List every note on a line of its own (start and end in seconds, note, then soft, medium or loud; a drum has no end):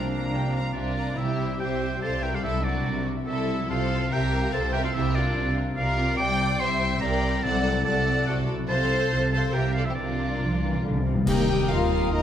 0.00 0.25 C2 soft
0.00 0.25 C3 soft
0.00 0.48 C3 medium
0.00 1.15 C3 soft
0.00 0.95 F3 soft
0.00 0.96 A#3 soft
0.00 0.93 C4 soft
0.00 0.72 D4 medium
0.00 0.97 F4 soft
0.00 0.29 C5 soft
0.00 0.94 C5 soft
0.00 0.25 D5 soft
0.00 0.71 F5 soft
0.00 0.94 A#5 soft
0.09 0.94 A#3 soft
0.09 0.53 A#5 soft
0.30 0.68 C2 soft
0.30 0.68 C3 soft
0.30 0.72 C5 soft
0.30 0.51 G5 medium
0.52 1.19 A#4 soft
0.52 0.75 F5 soft
0.52 0.75 A#5 soft
0.73 1.12 C2 soft
0.73 1.12 C3 soft
0.73 1.14 D4 medium
0.73 1.15 F4 soft
0.73 1.15 A#4 soft
0.73 2.46 C5 soft
0.73 1.18 D5 medium
0.73 0.96 E5 soft
0.95 1.19 A#3 soft
0.95 1.17 D5 soft
0.95 1.17 A#5 soft
1.16 1.54 C2 medium
1.16 1.76 C3 medium
1.16 2.42 C3 medium
1.16 1.54 C3 medium
1.16 1.59 E4 medium
1.16 1.60 G4 medium
1.16 1.60 C5 medium
1.16 1.59 E5 medium
1.26 2.32 G3 soft
1.37 2.21 E4 soft
1.47 2.10 D5 soft
1.58 1.96 C2 medium
1.58 1.97 C3 medium
1.58 2.00 G4 medium
1.58 1.99 G4 soft
1.58 2.01 C5 medium
1.58 2.02 E5 medium
1.58 2.01 G5 medium
1.68 1.88 E5 soft
1.79 3.05 D6 soft
1.89 2.94 E5 soft
2.00 2.39 C2 medium
2.00 2.38 C3 medium
2.00 2.45 G4 soft
2.00 2.09 A4 medium
2.00 2.23 C5 medium
2.00 2.23 F5 medium
2.00 2.24 A5 medium
2.11 2.73 D5 soft
2.22 2.63 E4 soft
2.22 2.33 G4 medium
2.22 2.34 A#4 medium
2.22 2.33 E5 medium
2.22 2.36 G5 medium
2.33 2.45 G3 soft
2.33 2.44 F4 soft
2.33 2.43 A4 soft
2.33 2.44 D5 medium
2.33 2.43 F5 medium
2.43 2.81 C2 medium
2.43 2.81 C3 medium
2.43 3.69 C3 medium
2.43 3.03 C3 medium
2.43 2.65 E4 medium
2.43 2.65 A4 medium
2.43 2.66 A4 medium
2.43 2.65 E5 medium
2.54 3.58 F#3 soft
2.64 3.07 D4 medium
2.64 3.47 E4 soft
2.64 3.06 F#4 medium
2.64 3.08 A#4 medium
2.64 3.06 D5 medium
2.75 3.37 D5 soft
2.85 3.23 C2 medium
2.85 3.23 C3 medium
2.85 3.26 F#4 soft
2.96 3.16 E5 soft
3.06 3.71 D6 soft
3.17 3.72 E5 medium
3.26 3.64 C2 medium
3.26 3.65 C3 medium
3.26 3.67 E4 medium
3.26 3.72 F#4 soft
3.26 3.66 A4 medium
3.26 3.68 A4 medium
3.26 3.66 E5 medium
3.38 3.72 D5 soft
3.48 3.71 E4 soft
3.59 3.71 F#3 soft
3.69 4.07 C2 medium
3.69 4.07 C3 medium
3.69 4.93 C3 medium
3.69 4.12 F4 medium
3.69 4.10 A4 medium
3.69 4.11 C5 medium
3.69 4.14 F5 medium
3.80 4.96 C4 soft
3.91 4.72 F4 soft
4.00 4.61 C5 medium
4.11 4.48 C2 medium
4.11 4.48 C3 medium
4.11 4.53 G4 medium
4.11 4.52 A#4 medium
4.11 4.52 E5 medium
4.11 4.52 G5 medium
4.11 4.97 A5 medium
4.32 5.56 C6 medium
4.42 5.45 F5 medium
4.51 4.90 C2 medium
4.51 4.90 C3 medium
4.51 4.96 A4 medium
4.51 4.74 A4 medium
4.51 4.74 C5 medium
4.51 4.59 F5 medium
4.51 4.72 A5 medium
4.63 5.25 C5 soft
4.73 5.14 F4 medium
4.73 4.78 G4 medium
4.73 4.85 A#4 medium
4.73 4.84 E5 medium
4.73 4.84 G5 medium
4.84 4.96 A3 soft
4.84 4.89 F4 medium
4.84 4.95 A4 medium
4.84 4.95 D5 medium
4.84 4.96 F5 medium
4.93 5.31 C2 medium
4.93 6.18 C3 medium
4.93 5.32 C3 medium
4.93 5.53 C3 medium
4.93 5.16 E4 medium
4.93 5.17 G4 medium
4.93 5.15 C5 medium
4.93 5.16 E5 medium
5.05 6.07 A#3 soft
5.14 5.57 D4 medium
5.14 5.98 F4 medium
5.14 5.58 F4 medium
5.14 5.56 A#4 medium
5.14 5.57 D5 medium
5.26 5.86 C5 medium
5.36 5.73 C2 medium
5.36 5.73 C3 medium
5.36 5.77 A#4 medium
5.47 5.66 F5 medium
5.57 6.80 C6 medium
5.68 6.21 F5 medium
5.76 6.14 C2 medium
5.76 6.15 C3 medium
5.76 6.17 F4 medium
5.76 6.21 A#4 medium
5.76 6.17 A#4 medium
5.76 6.16 D5 medium
5.76 6.16 F5 medium
5.87 6.49 C5 soft
5.99 6.21 F4 medium
6.08 6.21 A#3 medium
6.17 6.56 C2 medium
6.17 7.43 C3 medium
6.17 6.56 C3 medium
6.17 6.60 D5 medium
6.17 6.58 G5 medium
6.17 6.61 D6 loud
6.21 6.62 G5 medium
6.30 7.32 G3 medium
6.40 7.21 E4 medium
6.51 7.11 C5 medium
6.60 6.98 C2 medium
6.60 6.97 C3 medium
6.60 7.01 G4 medium
6.60 7.03 C5 medium
6.60 7.04 E5 medium
6.60 7.00 G5 medium
6.60 7.00 C6 loud
6.70 6.90 E5 medium
6.81 7.46 C6 medium
6.91 7.96 E5 medium
7.01 7.40 C2 medium
7.01 7.39 C3 medium
7.01 7.46 G4 medium
7.01 7.44 A#4 medium
7.01 7.45 D5 medium
7.01 7.43 G5 medium
7.01 7.45 A#5 medium
7.12 7.46 C5 medium
7.22 7.64 E4 medium
7.33 7.46 G3 medium
7.43 7.82 C2 medium
7.43 8.03 C3 medium
7.43 7.81 C3 medium
7.43 8.68 C3 medium
7.43 7.85 A4 medium
7.43 7.85 D5 medium
7.43 7.85 F#5 medium
7.43 7.84 A5 medium
7.55 8.58 F#3 medium
7.66 8.47 E4 medium
7.76 8.37 D5 medium
7.85 8.23 C2 medium
7.85 8.23 C3 medium
7.85 8.27 F#4 soft
7.85 8.27 A4 medium
7.85 8.27 D5 medium
7.85 8.27 F#5 medium
7.85 8.26 A5 loud
7.97 8.16 E5 medium
8.08 8.72 D6 medium
8.17 8.72 E5 medium
8.26 8.65 C2 medium
8.26 8.65 C3 medium
8.26 8.49 F#4 medium
8.26 8.72 F#4 medium
8.26 8.49 A4 medium
8.26 8.49 D5 medium
8.26 8.36 F#5 medium
8.39 8.72 D5 medium
8.49 8.72 E4 medium
8.59 8.72 F#3 soft
8.68 9.07 C2 medium
8.68 9.07 C3 medium
8.68 9.97 C3 medium
8.68 9.29 A4 medium
8.68 9.30 C5 loud
8.68 9.29 F5 medium
8.68 9.29 A5 medium
8.81 9.87 F3 soft
8.91 9.11 F4 medium
9.02 9.65 C5 medium
9.11 9.49 C2 medium
9.11 9.50 C3 medium
9.11 9.53 F4 soft
9.23 9.43 F5 medium
9.32 9.54 A4 medium
9.32 9.55 C5 medium
9.32 9.42 F5 medium
9.32 9.42 A5 medium
9.32 11.29 C6 soft
9.45 10.52 F5 medium
9.53 9.92 C2 medium
9.53 9.93 C3 medium
9.53 9.75 F4 medium
9.53 9.76 G4 medium
9.53 9.77 A#4 medium
9.53 9.77 E5 medium
9.53 9.72 G5 medium
9.66 11.29 C5 soft
9.73 10.19 F4 soft
9.73 9.87 F4 medium
9.73 9.81 D5 medium
9.73 9.87 F5 medium
9.77 9.82 A4 medium
9.85 10.08 F3 soft
9.85 9.98 E4 medium
9.85 9.93 G4 medium
9.85 9.98 C5 soft
9.85 9.94 E5 medium
9.95 10.36 C2 medium
9.95 10.36 C3 medium
9.95 11.29 C3 medium
9.95 10.83 D4 medium
9.95 10.81 D5 medium
9.99 10.84 F4 medium
9.99 10.85 A#4 medium
10.05 10.12 C3 soft
10.05 11.15 F3 soft
10.13 10.19 C3 soft
10.20 10.42 F4 soft
10.28 10.35 C3 soft
10.28 10.94 A#4 soft
10.37 10.79 C2 medium
10.37 10.43 C3 soft
10.41 10.51 C3 soft
10.41 10.61 F3 medium
10.41 10.83 F4 soft
10.53 10.59 C3 soft
10.53 10.72 F5 soft
10.60 10.67 C3 medium
10.60 10.84 E3 medium
10.60 12.00 A#5 soft
10.68 10.74 C3 medium
10.73 10.82 C3 medium
10.73 11.29 F5 soft
10.83 11.22 C2 medium
10.83 10.90 C3 medium
10.83 11.05 D3 medium
10.83 11.05 F4 soft
10.91 10.97 C3 medium
10.95 11.05 C3 medium
10.95 11.69 A#4 soft
11.06 11.27 C3 medium
11.06 11.13 C3 medium
11.06 11.29 F4 soft
11.15 11.21 C3 medium
11.15 11.29 F3 soft
11.26 11.65 D#2 medium
11.26 11.43 D#3 medium
11.26 12.22 D#3 medium
11.26 11.88 D#3 medium
11.26 11.42 A#3 medium
11.26 11.47 A#3 medium
11.26 11.67 G4 medium
11.26 11.47 A#4 medium
11.26 12.22 A#4 medium
11.26 12.22 D#5 medium
11.26 11.47 D#5 medium
11.26 11.67 G5 medium
11.26 11.47 A#5 medium
11.26 12.22 A#5 medium
11.26 concert bass drum medium
11.26 crash medium
11.38 12.22 D#4 soft
11.48 11.70 G3 medium
11.48 12.22 A#3 medium
11.48 11.70 G4 medium
11.48 11.70 G5 medium
11.48 11.70 D#6 medium
11.60 11.80 G4 medium
11.69 12.07 D#2 medium
11.69 11.91 A#3 medium
11.69 12.12 F4 loud
11.69 12.22 A#4 medium
11.69 11.91 A#4 medium
11.69 11.91 D#5 medium
11.69 12.12 F5 medium
11.69 11.91 A#5 medium
11.81 12.22 G4 medium
11.90 12.12 G3 medium
11.90 12.12 G4 medium
11.90 12.11 G5 medium
11.90 12.12 G5 medium
11.90 12.13 D#6 medium
12.02 12.22 A#5 medium
12.11 12.22 D#2 medium
12.11 12.22 A#3 medium
12.11 12.22 D#4 medium
12.11 12.22 A#4 medium
12.11 12.22 D#5 medium
12.11 12.22 G5 medium
12.11 12.22 A#5 medium